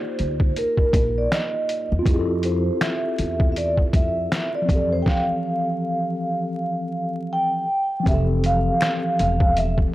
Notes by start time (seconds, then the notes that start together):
Already playing: A#3 D#4 F4 G4 C5
0.19 D2, closed hi-hat
0.40 kick
0.56 A#4, closed hi-hat
0.77 kick
0.93 A#1, kick, closed hi-hat
1.18 D5
1.32 finger snap, snare, closed hi-hat
1.69 closed hi-hat
1.92 E2
1.99 C4 F4
2.06 F2 E4 G4, kick, closed hi-hat
2.13 G#4
2.19 A4
2.43 C5, closed hi-hat
2.81 E5, finger snap, snare, closed hi-hat
3.19 E2, closed hi-hat
3.40 kick
3.52 E5
3.56 D5, closed hi-hat
3.77 kick
3.93 F2 E5, kick, closed hi-hat
4.32 finger snap, snare, closed hi-hat
4.55 D5
4.62 F3 C4
4.69 F2 E3 G4, kick, closed hi-hat
4.75 A4
4.92 C5
5.02 G5, kick
5.08 F5, snare
7.33 G5
8.00 F3 C4
8.06 F1 E3 E5, kick, closed hi-hat
8.10 G4 A4
8.44 F5, closed hi-hat
8.81 finger snap, snare, closed hi-hat
9.19 E1 F5, closed hi-hat
9.40 kick
9.57 E5, closed hi-hat
9.78 kick